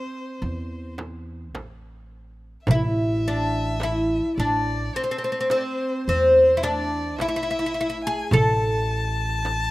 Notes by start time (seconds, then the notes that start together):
Already playing: C4 C5
0.42 E2
0.98 darbuka tek, frame drum
1.54 A1, darbuka tek, frame drum
2.67 A1 E5, frame drum, darbuka dum
2.71 E4
3.28 D4
3.80 E4, darbuka tek, frame drum
4.38 A1 D4 D5
4.95 C4 C5
5.04 C4
5.11 C4
5.18 C4
5.24 C4
5.32 C4
5.40 C4
5.50 C4 C5, darbuka tek, frame drum
5.58 D5
5.64 C5
6.07 E2 C4 C5
6.57 E4
6.62 D4 D5, darbuka tek, frame drum
7.19 A1 E4 E5, darbuka tek, frame drum
7.28 E4
7.36 E4
7.43 E4
7.51 E4
7.59 E4
7.66 E4
7.74 E4
7.81 E4
7.90 E4
8.05 G#4 G#5
8.31 A1 A4 A5, frame drum, darbuka dum
9.45 darbuka tek, frame drum